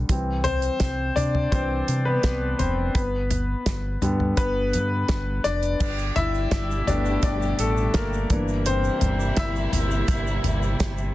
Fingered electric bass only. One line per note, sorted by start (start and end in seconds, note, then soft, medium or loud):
0.09 0.68 C2 medium
0.81 1.10 C2 medium
1.17 1.46 C3 medium
1.52 1.82 C2 medium
1.88 2.17 C3 medium
2.24 2.53 C2 medium
2.60 2.89 F1 medium
2.95 3.54 G1 medium
3.66 3.96 G1 medium
4.03 4.32 G2 medium
4.38 4.75 G1 medium
4.74 5.03 G2 medium
5.09 5.39 G1 loud
5.45 5.75 F1 medium
5.81 6.10 G1 medium
6.17 6.46 G1 medium
6.52 6.81 G1 medium
6.88 7.17 G1 medium
7.23 7.53 G1 medium
7.59 7.88 A1 medium
7.95 8.24 G1 medium
8.30 8.89 G1 medium
9.02 9.31 G1 medium
9.37 9.67 G1 loud
9.73 10.02 G1 medium
10.08 10.38 G1 medium
10.45 10.74 G1 medium
10.80 11.10 G1 loud